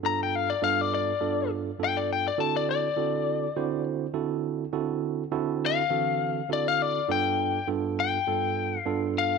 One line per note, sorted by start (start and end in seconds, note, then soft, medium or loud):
0.03 0.52 G2 medium
0.03 0.52 B3 medium
0.03 0.52 D4 medium
0.03 0.53 F4 medium
0.03 0.53 A4 medium
0.03 0.20 A#5 loud
0.23 0.35 G5 medium
0.35 0.49 F5 medium
0.50 0.64 D5 medium
0.62 1.11 G2 medium
0.62 1.11 B3 medium
0.62 1.11 D4 medium
0.62 1.11 F4 medium
0.62 1.11 A4 medium
0.62 0.81 F5 medium
0.81 0.93 D5 medium
0.94 1.50 D5 medium
1.21 1.70 G2 medium
1.21 1.70 B3 medium
1.21 1.70 D4 medium
1.21 1.70 F4 medium
1.21 1.70 A4 medium
1.79 2.28 G2 medium
1.79 2.29 B3 medium
1.79 2.29 D4 medium
1.79 2.29 F4 medium
1.79 2.29 A4 medium
1.84 1.97 G5 loud
1.97 2.10 D5 medium
2.13 2.26 G5 medium
2.28 2.40 D5 medium
2.38 2.87 D3 medium
2.38 2.87 C4 medium
2.38 2.88 E4 medium
2.38 2.87 F#4 medium
2.38 2.88 A4 medium
2.38 2.55 A5 medium
2.56 2.69 D5 medium
2.71 3.84 D5 loud
2.96 3.46 D3 medium
2.96 3.46 C4 medium
2.96 3.46 E4 medium
2.96 3.46 F#4 medium
2.96 3.46 A4 medium
3.56 4.05 D3 medium
3.56 4.05 C4 medium
3.56 4.05 E4 medium
3.56 4.05 F#4 medium
3.56 4.06 C5 medium
4.14 4.64 D3 medium
4.14 4.64 C4 medium
4.14 4.64 E4 medium
4.14 4.64 F#4 medium
4.14 4.64 A4 medium
4.73 5.22 D3 medium
4.73 5.22 C4 medium
4.73 5.22 E4 medium
4.73 5.23 F#4 medium
4.73 5.23 A4 medium
5.32 5.81 D3 medium
5.32 5.81 C4 medium
5.32 5.81 E4 medium
5.32 5.81 F#4 medium
5.32 5.81 A4 loud
5.66 6.50 F5 loud
5.90 6.40 D3 medium
5.90 6.40 E3 medium
5.90 6.40 C4 medium
5.90 6.40 F#4 medium
5.90 6.40 A4 medium
6.49 6.99 D3 medium
6.49 6.99 C4 medium
6.49 6.99 E4 medium
6.49 6.99 F#4 medium
6.49 6.99 A4 medium
6.49 6.68 D5 medium
6.68 6.82 F5 medium
6.82 7.10 D5 loud
7.08 7.58 G2 medium
7.08 7.58 B3 medium
7.08 7.58 D4 medium
7.08 7.58 F4 medium
7.08 7.58 A4 medium
7.08 7.68 G5 loud
7.68 8.17 G2 medium
7.68 8.17 B3 medium
7.68 8.17 D4 medium
7.68 8.17 F4 medium
7.68 8.17 A4 medium
8.00 8.79 G5 loud
8.27 8.76 G2 medium
8.27 8.76 B3 medium
8.27 8.76 D4 medium
8.27 8.76 F4 medium
8.27 8.76 A4 medium
8.79 9.13 F5 loud
8.86 9.35 G2 medium
8.86 9.35 B3 medium
8.86 9.35 D4 medium
8.86 9.35 F4 medium
8.86 9.35 A4 medium
9.18 9.38 F5 loud